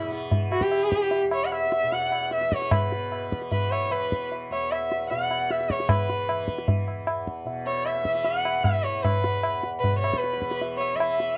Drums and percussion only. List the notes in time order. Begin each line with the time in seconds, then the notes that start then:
0.12 tabla te
0.31 tabla tin, tabla ge
0.52 tabla na
0.61 tabla ke
0.71 tabla na
0.92 tabla ke
1.11 tabla tin
1.31 tabla na
1.52 tabla na
1.72 tabla te
1.92 tabla tin
2.12 tabla na
2.31 tabla te
2.41 tabla te
2.52 tabla ke
2.62 tabla te
2.71 tabla na, tabla ge
2.92 tabla te
3.12 tabla na
3.32 tabla ke
3.42 tabla te
3.51 tabla tin, tabla ge
3.72 tabla na
3.91 tabla na
4.12 tabla ke
4.32 tabla tin
4.52 tabla na
4.72 tabla na
4.92 tabla te
5.11 tabla tin
5.31 tabla na
5.50 tabla te
5.60 tabla te
5.70 tabla ke
5.80 tabla te
5.89 tabla na, tabla ge
6.10 tabla te
6.29 tabla na
6.48 tabla ke
6.58 tabla te
6.68 tabla tin, tabla ge
6.88 tabla na
7.07 tabla na
7.27 tabla ke
7.47 tabla tin
7.67 tabla na
7.86 tabla na
8.05 tabla ke
8.15 tabla te
8.25 tabla tin
8.45 tabla na
8.64 tabla na, tabla ge
8.84 tabla te
9.05 tabla na, tabla ge
9.24 tabla te
9.43 tabla na
9.63 tabla te
9.84 tabla tin, tabla ge
10.04 tabla na
10.14 tabla ke
10.24 tabla te
10.33 tabla te
10.42 tabla ke
10.51 tabla te
10.62 tabla tin
10.81 tabla na
11.00 tabla na
11.20 tabla te